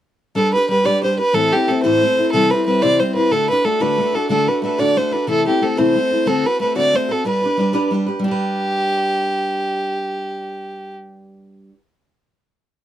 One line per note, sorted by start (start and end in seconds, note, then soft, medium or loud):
0.35 0.54 G3 medium
0.35 0.54 D4 medium
0.35 0.54 G4 medium
0.35 0.53 A4 medium
0.35 0.52 B4 medium
0.53 0.69 D4 soft
0.53 0.70 G4 soft
0.53 0.69 B4 soft
0.53 0.69 B4 medium
0.69 0.85 G3 medium
0.69 0.85 D4 medium
0.69 0.84 G4 medium
0.69 0.87 B4 medium
0.69 0.83 B4 medium
0.84 1.01 G3 medium
0.84 1.02 D4 medium
0.84 1.03 G4 medium
0.84 1.03 B4 medium
0.84 1.03 D5 medium
1.02 1.18 G3 soft
1.02 1.19 D4 medium
1.02 1.18 G4 medium
1.02 1.16 B4 medium
1.02 1.18 C5 medium
1.17 1.34 D4 soft
1.17 1.35 G4 soft
1.17 1.34 B4 soft
1.17 1.36 B4 medium
1.33 1.52 A2 medium
1.33 1.52 E3 medium
1.33 1.52 A3 medium
1.33 1.53 C4 medium
1.33 1.52 E4 medium
1.33 1.54 A4 loud
1.33 1.51 A4 medium
1.52 1.66 A3 soft
1.52 1.68 C4 soft
1.52 1.68 E4 soft
1.52 1.70 G4 medium
1.52 1.68 A4 soft
1.68 1.83 A3 medium
1.68 1.84 C4 medium
1.68 1.83 E4 medium
1.68 1.82 A4 medium
1.83 2.03 A2 medium
1.83 2.03 E3 medium
1.83 2.00 A3 medium
1.83 2.02 C4 medium
1.83 2.02 E4 medium
1.83 2.02 A4 medium
1.83 2.29 C5 loud
2.02 2.17 A3 soft
2.02 2.18 C4 medium
2.02 2.18 E4 medium
2.02 2.16 A4 medium
2.17 2.34 A3 soft
2.17 2.34 C4 soft
2.17 2.34 E4 soft
2.17 2.33 A4 soft
2.32 2.51 C3 medium
2.32 2.51 E3 medium
2.32 2.51 G3 medium
2.32 2.52 C4 medium
2.32 2.51 E4 medium
2.32 2.52 A4 loud
2.32 2.49 C5 medium
2.50 2.65 G3 soft
2.50 2.66 C4 soft
2.50 2.67 E4 soft
2.50 2.65 B4 medium
2.50 2.66 C5 medium
2.66 2.82 G3 medium
2.66 2.81 C4 medium
2.66 2.81 E4 medium
2.66 2.83 B4 medium
2.66 2.80 C5 medium
2.82 3.01 C3 medium
2.82 3.01 E3 medium
2.82 2.98 G3 medium
2.82 3.00 C4 medium
2.82 3.00 E4 medium
2.82 3.00 C5 medium
2.82 3.01 D5 loud
3.00 3.15 G3 medium
3.00 3.16 C4 soft
3.00 3.15 E4 medium
3.00 3.14 C5 medium
3.15 3.32 G3 soft
3.15 3.32 C4 soft
3.15 3.32 E4 soft
3.15 3.33 B4 medium
3.15 3.31 C5 soft
3.31 3.49 D3 medium
3.31 3.50 A3 medium
3.31 3.50 D4 medium
3.31 3.50 F#4 medium
3.31 3.49 A4 medium
3.31 3.48 A4 medium
3.49 3.65 D4 soft
3.49 3.66 F#4 soft
3.49 3.65 A4 soft
3.49 3.66 B4 medium
3.65 3.80 A3 medium
3.65 3.80 D4 medium
3.65 3.80 F#4 medium
3.65 3.83 A4 medium
3.65 3.79 A4 medium
3.80 3.99 D3 soft
3.80 3.97 A3 medium
3.80 3.98 D4 medium
3.80 3.99 F#4 medium
3.80 3.98 A4 medium
3.80 4.16 B4 medium
3.98 4.14 A3 soft
3.98 4.14 D4 soft
3.98 4.14 F#4 soft
3.98 4.11 A4 medium
4.13 4.29 D4 soft
4.13 4.30 F#4 soft
4.13 4.29 A4 soft
4.13 4.29 A4 medium
4.29 4.48 D3 medium
4.29 4.48 A3 medium
4.29 4.48 D4 medium
4.29 4.47 F#4 medium
4.29 4.49 A4 medium
4.29 4.46 A4 medium
4.47 4.62 D4 soft
4.47 4.63 F#4 soft
4.47 4.63 A4 soft
4.47 4.63 B4 medium
4.62 4.78 A3 medium
4.62 4.79 D4 medium
4.62 4.78 F#4 medium
4.62 4.77 A4 medium
4.62 4.81 B4 medium
4.78 4.98 D3 medium
4.78 4.95 A3 medium
4.78 4.96 D4 medium
4.78 4.97 F#4 medium
4.78 4.97 A4 medium
4.78 4.99 D5 medium
4.96 5.12 A3 medium
4.96 5.13 D4 medium
4.96 5.12 F#4 medium
4.96 5.10 A4 medium
4.96 5.14 C5 medium
5.12 5.28 D4 soft
5.12 5.28 F#4 soft
5.12 5.28 A4 soft
5.12 5.28 B4 medium
5.27 5.46 C3 medium
5.27 5.46 E3 medium
5.27 5.46 A3 medium
5.27 5.46 C4 medium
5.27 5.46 E4 medium
5.27 5.44 A4 medium
5.27 5.46 A4 medium
5.45 5.60 A3 soft
5.45 5.61 C4 soft
5.45 5.62 E4 soft
5.45 5.64 G4 medium
5.45 5.61 A4 soft
5.62 5.77 A3 medium
5.62 5.77 C4 medium
5.62 5.76 E4 medium
5.62 5.79 A4 medium
5.62 5.76 A4 medium
5.77 5.96 C3 medium
5.77 5.96 E3 medium
5.77 5.94 A3 medium
5.77 5.95 C4 medium
5.77 5.96 E4 medium
5.77 5.95 A4 medium
5.77 6.29 C5 medium
5.95 6.11 A3 medium
5.95 6.12 C4 medium
5.95 6.11 E4 medium
5.95 6.10 A4 medium
6.11 6.25 A3 soft
6.11 6.26 C4 soft
6.11 6.27 E4 soft
6.11 6.27 A4 soft
6.26 6.44 D3 medium
6.26 6.45 A3 medium
6.26 6.45 C4 medium
6.26 6.45 F#4 medium
6.26 6.47 A4 medium
6.26 6.43 A4 medium
6.44 6.60 C4 soft
6.44 6.61 F#4 soft
6.44 6.60 A4 soft
6.44 6.61 B4 medium
6.60 6.76 A3 medium
6.60 6.75 C4 medium
6.60 6.75 F#4 medium
6.60 6.74 A4 medium
6.60 6.75 B4 medium
6.75 6.95 D3 medium
6.75 6.92 A3 medium
6.75 6.94 C4 medium
6.75 6.94 F#4 medium
6.75 6.94 A4 medium
6.75 6.97 D5 loud
6.94 7.09 A3 medium
6.94 7.10 C4 medium
6.94 7.10 F#4 soft
6.94 7.08 A4 medium
6.94 7.13 C5 medium
7.09 7.25 C4 soft
7.09 7.26 F#4 soft
7.09 7.25 A4 soft
7.09 7.26 A4 medium
7.24 7.43 G3 medium
7.24 7.43 D4 medium
7.24 7.43 G4 medium
7.24 7.41 B4 medium
7.24 7.89 B4 medium
7.42 7.58 D4 soft
7.42 7.59 G4 soft
7.42 7.58 B4 soft
7.57 7.74 G3 medium
7.57 7.73 D4 medium
7.57 7.73 G4 medium
7.57 7.72 B4 medium
7.73 7.90 G3 medium
7.73 7.91 D4 medium
7.73 7.92 G4 medium
7.73 7.92 B4 medium
7.91 8.07 G3 medium
7.91 8.08 D4 medium
7.91 8.07 G4 medium
7.91 8.05 B4 medium
8.06 8.23 D4 soft
8.06 8.23 G4 soft
8.06 8.23 B4 soft
8.19 11.69 G3 medium
8.24 11.74 D4 medium
8.24 10.95 G4 medium
8.28 11.78 G4 medium
8.28 11.81 B4 medium